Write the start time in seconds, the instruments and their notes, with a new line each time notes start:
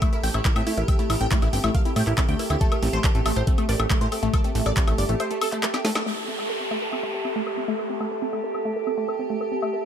Already playing: ambient pad G4 A4 E5 A5
0.02 synth arpeggio sound A3, supersaw synth E4, kick, closed hi-hat, high woodblock
0.13 supersaw synth E4, synth arpeggio sound A#4, closed hi-hat
0.24 analog synth bass A1, synth arpeggio sound C4, supersaw synth G5, open hi-hat
0.34 analog synth bass A1, synth arpeggio sound A3, supersaw synth E4, closed hi-hat, high woodblock
0.45 supersaw synth E4, synth arpeggio sound A#4, kick, clap
0.56 analog synth bass A2, synth arpeggio sound C4, supersaw synth E5, closed hi-hat, high woodblock
0.67 synth arpeggio sound A3, supersaw synth E4, open hi-hat
0.77 analog synth bass A1, supersaw synth E4, synth arpeggio sound A#4, closed hi-hat
0.88 synth arpeggio sound C4, supersaw synth E5, kick, closed hi-hat, high woodblock
0.99 synth arpeggio sound A3, supersaw synth E4, closed hi-hat
1.10 analog synth bass A1, supersaw synth E4, synth arpeggio sound A#4, open hi-hat, high woodblock
1.21 analog synth bass A1, synth arpeggio sound C4, supersaw synth G5, closed hi-hat
1.31 synth arpeggio sound A3, supersaw synth E4, kick, clap, closed hi-hat
1.42 analog synth bass A1, supersaw synth E4, synth arpeggio sound A#4, closed hi-hat, high woodblock
1.53 analog synth bass G1, synth arpeggio sound C4, supersaw synth G5, open hi-hat
1.64 analog synth bass A1, synth arpeggio sound A3, supersaw synth E4, closed hi-hat, high woodblock
1.75 synth arpeggio sound A#4, supersaw synth F5, kick, closed hi-hat
1.85 synth arpeggio sound C4, supersaw synth E4, closed hi-hat
1.96 analog synth bass A2, synth arpeggio sound A3, supersaw synth G5, open hi-hat, high woodblock
2.07 analog synth bass A1, supersaw synth E4, synth arpeggio sound A#4, clap, closed hi-hat
2.18 synth arpeggio sound C4, supersaw synth E4, kick, clap, high woodblock
2.29 analog synth bass D2, synth arpeggio sound A3, supersaw synth G5, closed hi-hat
2.39 supersaw synth E4, synth arpeggio sound A#4, open hi-hat
2.50 analog synth bass D2, synth arpeggio sound C4, supersaw synth E4, closed hi-hat, high woodblock
2.61 synth arpeggio sound A3, supersaw synth A4, kick, closed hi-hat
2.72 supersaw synth A3, synth arpeggio sound A#4, closed hi-hat, high woodblock
2.82 analog synth bass A1, supersaw synth A3, synth arpeggio sound C4, open hi-hat
2.93 analog synth bass A1, synth arpeggio sound A3, supersaw synth C5, closed hi-hat
3.04 supersaw synth A3, synth arpeggio sound A#4, kick, clap, closed hi-hat, high woodblock
3.15 analog synth bass A1, supersaw synth A3, synth arpeggio sound C4, closed hi-hat
3.26 analog synth bass A1, synth arpeggio sound A3, supersaw synth A3, open hi-hat, high woodblock
3.36 analog synth bass A1, synth arpeggio sound A#4, supersaw synth C5, closed hi-hat
3.47 supersaw synth A3, synth arpeggio sound C4, kick, closed hi-hat
3.58 supersaw synth A3, synth arpeggio sound A3, closed hi-hat, high woodblock
3.69 analog synth bass A1, synth arpeggio sound A#4, supersaw synth D5, open hi-hat
3.80 analog synth bass A1, supersaw synth A3, synth arpeggio sound C4, closed hi-hat, high woodblock
3.90 supersaw synth A3, synth arpeggio sound A3, kick, clap
4.01 analog synth bass A2, synth arpeggio sound A#4, supersaw synth C5, closed hi-hat
4.12 supersaw synth A3, synth arpeggio sound C4, open hi-hat, high woodblock
4.23 analog synth bass A1, supersaw synth A3, synth arpeggio sound A3, closed hi-hat
4.34 supersaw synth A4, synth arpeggio sound A#4, kick, closed hi-hat, high woodblock
4.44 supersaw synth A3, synth arpeggio sound C4, closed hi-hat
4.55 analog synth bass A1, synth arpeggio sound A3, supersaw synth A3, open hi-hat
4.66 analog synth bass A1, synth arpeggio sound A#4, supersaw synth D5, closed hi-hat, high woodblock
4.77 supersaw synth A3, synth arpeggio sound C4, kick, clap, closed hi-hat
4.88 analog synth bass A1, supersaw synth A3, synth arpeggio sound A3, closed hi-hat, high woodblock
4.98 analog synth bass G1, synth arpeggio sound A#4, supersaw synth D5, open hi-hat
5.09 analog synth bass A1, supersaw synth A3, synth arpeggio sound C4, closed hi-hat
5.20 synth arpeggio sound A3, supersaw synth C5, closed hi-hat, high woodblock
5.31 supersaw synth A3, synth arpeggio sound A#4, closed hi-hat
5.41 synth arpeggio sound C4, supersaw synth A4, open hi-hat, high woodblock
5.52 synth arpeggio sound A3, supersaw synth A3, clap, closed hi-hat
5.63 supersaw synth A3, synth arpeggio sound A#4, clap, closed hi-hat
5.74 synth arpeggio sound C4, supersaw synth G4, snare, closed hi-hat, high woodblock
5.85 synth arpeggio sound A3, supersaw synth A3, snare, open hi-hat
5.95 supersaw synth A3, synth arpeggio sound A#4, snare, closed hi-hat, high woodblock
6.06 synth arpeggio sound A3, ambient pad G4, downlifter
6.17 synth arpeggio sound A#4, high woodblock
6.28 synth arpeggio sound C4
6.39 synth arpeggio sound A3, high woodblock
6.49 synth arpeggio sound A#4
6.60 synth arpeggio sound C4
6.71 synth arpeggio sound A3, high woodblock
6.82 synth arpeggio sound A#4
6.93 synth arpeggio sound C4, high woodblock
7.03 synth arpeggio sound A3
7.14 synth arpeggio sound A#4
7.25 synth arpeggio sound C4, high woodblock
7.36 synth arpeggio sound A3
7.47 synth arpeggio sound A#4, high woodblock
7.57 synth arpeggio sound C4
7.68 synth arpeggio sound A3
7.79 synth arpeggio sound A#4, high woodblock
7.90 synth arpeggio sound C4
8.00 synth arpeggio sound A3, high woodblock
8.11 synth arpeggio sound A#4
8.22 synth arpeggio sound C4
8.33 synth arpeggio sound A3, high woodblock
8.44 synth arpeggio sound A#4
8.54 synth arpeggio sound C4, high woodblock
8.65 synth arpeggio sound A3
8.76 synth arpeggio sound A#4
8.87 synth arpeggio sound C4, high woodblock
8.98 synth arpeggio sound A3
9.08 synth arpeggio sound A#4, high woodblock
9.19 synth arpeggio sound C4
9.30 synth arpeggio sound A3
9.41 synth arpeggio sound A#4, high woodblock
9.52 synth arpeggio sound C4
9.62 synth arpeggio sound A3, high woodblock
9.73 synth arpeggio sound A#4